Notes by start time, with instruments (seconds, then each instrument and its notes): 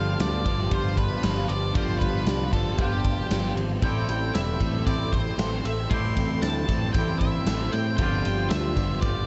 Already playing: picked electric bass G1, overdriven electric guitar G2 D3 F3 B3 F4 G4, clean electric guitar G2 D3 F3 C4 F4 G4, analog synth pad G4 F5 A5, lead electric guitar F5
0.20 picked electric bass D2, clean electric guitar D4, lead electric guitar D5, snare, ride
0.44 picked electric bass G1, overdriven electric guitar G2 D3 F3 B3 F4 G4, clean electric guitar F3, kick, ride
0.70 picked electric bass G1, clean electric guitar G2 D3 F3 F4, lead electric guitar C5, kick, ride
0.74 clean electric guitar G4
0.97 clean electric guitar D4, lead electric guitar B4, kick, ride
1.22 picked electric bass G1, overdriven electric guitar G2 D3 F3 B3 F4 G4, clean electric guitar F3, snare, ride
1.48 picked electric bass G1, lead electric guitar D5, ride
1.73 picked electric bass G1, clean electric guitar G2 D3 F3 F4 G4, overdriven electric guitar G2 D3 F3 B3 F4, lead electric guitar C5, kick, ride
1.78 overdriven electric guitar G4
1.99 picked electric bass G1, lead electric guitar B4, kick, ride
2.27 picked electric bass C2, clean electric guitar D4, snare, ride
2.52 picked electric bass G1, overdriven electric guitar G2 D3 F3 B3 F4 G4, clean electric guitar F3, lead electric guitar A4, kick, ride
2.78 picked electric bass G1, clean electric guitar G2 D3 F3 F4 G4, lead electric guitar G4, kick, ride
3.05 clean electric guitar D4, kick, ride
3.29 picked electric bass G1, overdriven electric guitar G2 D3 F3 B3 F4 G4, clean electric guitar F3, snare, ride
3.55 picked electric bass G#1, clean electric guitar C4, ride
3.81 picked electric bass A1, overdriven electric guitar A2 E3 C4 E4 A4, clean electric guitar A2 E3 G3 C4 E4, analog synth pad A4 G5 C6, lead electric guitar G5, kick, ride
3.86 clean electric guitar G4
4.08 picked electric bass A1, clean electric guitar C4, ride, tambourine
4.34 picked electric bass E1, clean electric guitar E4, lead electric guitar E5, snare, ride, tambourine
4.59 picked electric bass A1, overdriven electric guitar A2 E3 C4 E4 A4, clean electric guitar E3, kick, ride, tambourine
4.85 picked electric bass A1, clean electric guitar A2 G3 C4 E4, lead electric guitar D5, kick, ride, tambourine
4.89 clean electric guitar G4
5.12 clean electric guitar E4, lead electric guitar C5, kick, ride, tambourine
5.37 picked electric bass A1, overdriven electric guitar A2 E3 C4 E4 A4, clean electric guitar E3, snare, ride, tambourine
5.64 picked electric bass A1, clean electric guitar C4, lead electric guitar E5, ride, tambourine
5.88 picked electric bass A1, overdriven electric guitar A2 E3 C4 E4 A4, clean electric guitar A2 E3 G3 C4, lead electric guitar C6, kick, ride
5.93 clean electric guitar E4 G4
6.16 picked electric bass A1, clean electric guitar C4, kick, ride, tambourine
6.42 picked electric bass D2, clean electric guitar E4, lead electric guitar A5, snare, ride, tambourine
6.68 picked electric bass A1, overdriven electric guitar A2 E3 C4 E4 A4, clean electric guitar E3, kick, ride, tambourine
6.93 picked electric bass A1, clean electric guitar A2 G3 C4, lead electric guitar G5, kick, ride, tambourine
6.97 clean electric guitar C4 E4 G4
7.19 clean electric guitar E4, lead electric guitar E5, kick, ride, tambourine
7.46 picked electric bass A1, overdriven electric guitar A2 E3 C4 E4 A4, clean electric guitar E3, snare, ride, tambourine
7.72 picked electric bass A2, clean electric guitar C4, lead electric guitar G5, ride, tambourine
7.97 picked electric bass G1, overdriven electric guitar G2 D3 F3 G3 B3 G4, clean electric guitar G2 D3 F3, analog synth pad F4 G4, lead electric guitar G5, kick, ride
8.02 clean electric guitar F4 G4
8.25 picked electric bass G1, ride, tambourine
8.50 picked electric bass D2, clean electric guitar D4, lead electric guitar E5, snare, ride, tambourine
8.75 picked electric bass G1, overdriven electric guitar G2 D3 F3 G3 B3 G4, clean electric guitar F3, kick, ride, tambourine
9.01 picked electric bass G1, clean electric guitar G2 D3 F3, lead electric guitar D5, kick, ride, tambourine
9.05 clean electric guitar F4 G4